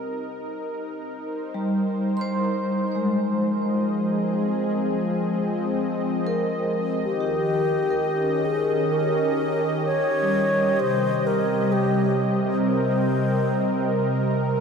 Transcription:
Already playing: analog synth pad C4 A#4 D#5
0.04 analog synth pad D#4
1.22 analog synth pad C5
1.54 vibraphone G3
2.17 vibraphone C6
2.21 vibraphone C5
2.95 vibraphone G#3
3.29 analog synth pad F3
3.63 analog synth pad D#5
3.86 analog synth pad G#4
4.11 analog synth pad C4
6.27 vibraphone A#4
7.04 analog synth pad D#3, alto flute G4
7.20 vibraphone G4
7.91 vibraphone A#4
8.07 analog synth pad C#4
8.45 alto flute G#4
8.73 analog synth pad G4
8.93 alto flute A#4
9.86 alto flute C#5
10.22 vibraphone G3
10.79 analog synth pad C3, alto flute C5
11.27 alto flute A#4
11.63 vibraphone G3
11.72 alto flute G4
11.83 analog synth pad C4
12.39 analog synth pad A#4
12.66 alto flute C5
14.54 analog synth pad G#3

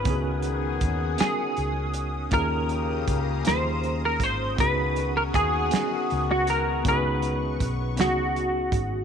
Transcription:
Already playing: analog synth pad C#4, clean electric guitar B4
0.04 fingered electric bass C#2, horn section D#3 B3 G#4, tine electric piano B3 C#4 D#4, analog synth pad F#5 G#5 D#6, kick, closed hi-hat
0.08 tine electric piano E4 G#4
0.15 tine electric piano F#4
0.42 closed hi-hat
0.81 fingered electric bass D#2, kick, closed hi-hat
1.17 tine electric piano B3 C#4 D#4, clean electric guitar G#4, muted fingered electric bass stroke, snare, closed hi-hat
1.22 tine electric piano F#4 A#4
1.57 fingered electric bass C#2, closed hi-hat
1.94 closed hi-hat
2.31 fingered electric bass D#2, horn section C#3 A#3 G4, tine electric piano A#3 C#4 D#4, clean electric guitar A#4, analog synth pad F5 A#5, kick, closed hi-hat
2.35 tine electric piano F4 G#4
2.69 closed hi-hat
3.08 fingered electric bass C#2, kick, closed hi-hat
3.44 fingered electric bass D#2, tine electric piano A#3 C#4 D#4, clean electric guitar C5, snare, closed hi-hat
3.48 tine electric piano F4 G#4
3.84 closed hi-hat
4.05 clean electric guitar A#4
4.20 fingered electric bass G#1, clean electric guitar C5, kick, closed hi-hat
4.57 fingered electric bass C#2, horn section D#3 B3 F#4, tine electric piano B3 C#4 D#4, clean electric guitar B4, analog synth pad F#5 G#5, kick, closed hi-hat
4.61 tine electric piano F#4 G#4
4.96 closed hi-hat
5.17 clean electric guitar A#4
5.34 fingered electric bass D#2, clean electric guitar G#4, kick, closed hi-hat
5.70 tine electric piano B3 C#4 D#4, snare, closed hi-hat
5.75 tine electric piano F#4 G#4
6.10 fingered electric bass C#2, closed hi-hat
6.31 clean electric guitar F#4
6.47 clean electric guitar A#4, closed hi-hat
6.84 fingered electric bass C#2, tine electric piano B3 C#4 D#4, analog synth pad C#6, kick, closed hi-hat
6.88 tine electric piano F#4 G#4, clean electric guitar B4
7.22 closed hi-hat
7.60 fingered electric bass B1, kick, closed hi-hat
7.96 fingered electric bass C#2, tine electric piano B3 C#4 D#4, clean electric guitar F#4, snare, closed hi-hat
8.01 tine electric piano F#4 G#4
8.05 clean electric guitar A#4
8.36 closed hi-hat
8.72 fingered electric bass G#1, kick, closed hi-hat

